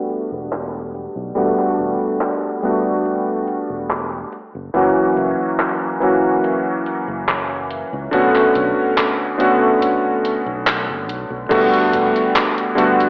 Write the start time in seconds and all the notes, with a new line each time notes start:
Already playing: G3 A3 B3 D4 F#4
0.10 closed hi-hat
0.32 E1
0.52 clap, closed hi-hat
0.95 closed hi-hat
1.16 B1
1.35 E1 G3 A3 B3 D4 F#4, closed hi-hat
1.59 clap
1.79 E1, closed hi-hat
2.21 clap, closed hi-hat
2.62 G3 A3 B3 D4 F#4, closed hi-hat
3.05 closed hi-hat
3.48 closed hi-hat
3.70 E1
3.90 clap, closed hi-hat
4.32 closed hi-hat
4.55 F#1
4.74 F#1 E3 F#3 A#3 C#4 F#4, closed hi-hat
5.17 F#1, closed hi-hat
5.59 clap, closed hi-hat
6.00 E3 F#3 A#3 C#4 F#4, closed hi-hat
6.44 closed hi-hat
6.86 closed hi-hat
7.08 F#1
7.28 clap, closed hi-hat
7.71 closed hi-hat
7.93 C#2
8.11 B1 D3 A3 B3 C#4 F#4, closed hi-hat
8.35 clap
8.55 B1, closed hi-hat
8.98 clap, closed hi-hat
9.38 D3 A3 B3 C#4 F#4, closed hi-hat
9.82 closed hi-hat
10.25 closed hi-hat
10.46 B1
10.67 clap, closed hi-hat
10.88 F#1
11.09 B1, closed hi-hat
11.30 B1
11.49 E1 D3 G3 A3 B3 F#4, kick, closed hi-hat, crash
11.74 closed hi-hat
11.93 E1, closed hi-hat
12.16 closed hi-hat
12.36 clap, closed hi-hat
12.58 closed hi-hat
12.75 D3 G3 A3 B3 F#4, closed hi-hat
13.00 closed hi-hat